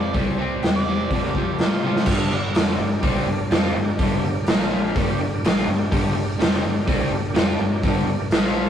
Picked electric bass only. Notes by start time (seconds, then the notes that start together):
Already playing: F2
0.15 C2
0.63 E2
1.11 F2
1.60 A2
2.07 G1
2.32 G1
2.56 F1
2.79 G1
3.03 C2
3.26 G1
3.51 F2
3.74 G1
4.00 G1
4.23 G1
4.48 A#1
4.96 G1
5.20 G1
5.44 A#1
5.68 G1
5.92 G1
6.16 G1
6.40 F1
6.63 G1
6.88 C2
7.11 G1
7.35 F2
7.58 G1
7.83 G1
8.06 G1
8.30 A#1